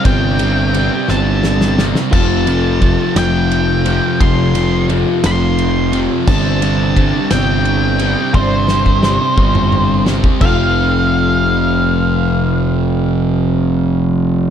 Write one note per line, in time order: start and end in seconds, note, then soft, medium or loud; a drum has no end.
0.00 2.09 D4 medium
0.00 2.10 D5 medium
0.00 10.37 G5 medium
0.05 0.89 G1 loud
0.05 0.38 C3 loud
0.05 0.39 G3 loud
0.05 0.40 C4 loud
0.05 1.10 G5 loud
0.05 kick loud
0.05 ride loud
0.39 0.73 C3 medium
0.39 0.74 G3 loud
0.39 0.75 C4 medium
0.39 ride medium
0.74 1.07 C3 medium
0.74 1.09 G3 medium
0.74 1.09 C4 medium
0.74 ride medium
1.08 1.92 G1 medium
1.08 1.76 C3 loud
1.08 1.78 G3 loud
1.08 1.78 C4 loud
1.08 1.83 A5 loud
1.08 snare medium
1.44 snare medium
1.61 snare medium
1.78 2.10 C3 medium
1.78 2.12 G3 medium
1.78 5.29 C4 medium
1.78 snare medium
1.95 snare medium
2.11 2.96 F1 loud
2.11 2.46 F2 loud
2.11 2.46 C3 loud
2.11 2.47 F3 loud
2.11 6.22 F4 medium
2.11 6.23 A4 medium
2.11 3.17 A5 loud
2.11 kick loud
2.11 crash loud
2.46 2.81 F2 medium
2.46 2.80 C3 medium
2.46 2.81 F3 loud
2.46 ride medium
2.81 3.14 F2 medium
2.81 3.15 C3 medium
2.81 3.16 F3 loud
2.81 kick medium
2.81 ride medium
3.16 3.99 F1 loud
3.16 3.84 F2 loud
3.16 3.85 C3 loud
3.16 3.85 F3 loud
3.16 4.24 G5 medium
3.16 snare loud
3.16 ride loud
3.51 ride medium
3.85 4.19 F2 medium
3.85 4.19 C3 loud
3.85 4.20 F3 loud
3.85 ride medium
4.20 5.04 F1 loud
4.20 4.53 F2 loud
4.20 4.54 C3 medium
4.20 4.54 F3 loud
4.20 4.86 C6 loud
4.20 kick loud
4.20 ride loud
4.54 4.88 F2 medium
4.54 4.88 C3 loud
4.54 4.89 F3 medium
4.54 ride medium
4.89 5.23 F2 medium
4.89 5.23 C3 medium
4.89 5.24 F3 loud
4.89 ride medium
5.24 6.07 F1 loud
5.24 5.91 F2 loud
5.24 5.92 C3 loud
5.24 5.92 F3 loud
5.24 5.99 C6 loud
5.24 snare loud
5.24 ride loud
5.58 ride medium
5.92 6.25 F2 medium
5.92 6.25 C3 medium
5.92 6.26 F3 loud
5.92 ride medium
6.27 7.10 G1 loud
6.27 6.60 C3 loud
6.27 6.61 G3 loud
6.27 6.62 C4 loud
6.27 10.38 D4 medium
6.27 8.33 C5 medium
6.27 7.31 A5 loud
6.27 kick loud
6.27 crash loud
6.61 6.95 C3 medium
6.61 6.96 G3 loud
6.61 6.97 C4 loud
6.61 ride medium
6.96 7.30 C3 medium
6.96 7.31 G3 loud
6.96 7.31 C4 loud
6.96 kick medium
6.96 ride medium
7.31 8.14 G1 loud
7.31 7.99 C3 loud
7.31 8.00 G3 loud
7.31 8.01 C4 loud
7.31 8.38 G5 loud
7.31 snare loud
7.31 ride loud
7.65 ride medium
7.99 8.32 C3 medium
7.99 8.33 G3 medium
7.99 8.34 C4 loud
7.99 ride medium
8.34 9.17 G1 loud
8.34 8.68 C3 loud
8.34 8.68 G3 loud
8.34 8.69 C4 loud
8.34 10.03 C5 medium
8.34 10.40 D5 medium
8.34 kick loud
8.68 9.01 C3 medium
8.68 9.02 G3 medium
8.68 9.02 C4 loud
8.68 snare medium
8.86 kick medium
9.03 9.35 C3 medium
9.03 9.36 G3 medium
9.03 9.36 C4 loud
9.03 snare medium
9.36 10.21 G1 loud
9.36 10.05 C3 loud
9.36 10.05 G3 loud
9.36 10.06 C4 loud
9.36 kick medium
9.55 mid tom medium
9.72 mid tom loud
10.06 10.39 C3 medium
10.06 10.39 G3 medium
10.06 10.39 C4 medium
10.06 snare loud
10.24 kick loud
10.39 14.50 F1 loud
10.39 14.50 F2 loud
10.39 14.50 C3 loud
10.39 14.50 F3 loud
10.39 14.50 A4 medium
10.39 14.50 F5 medium
10.39 kick loud
10.39 crash medium
10.44 14.50 F4 medium
10.44 14.50 G5 medium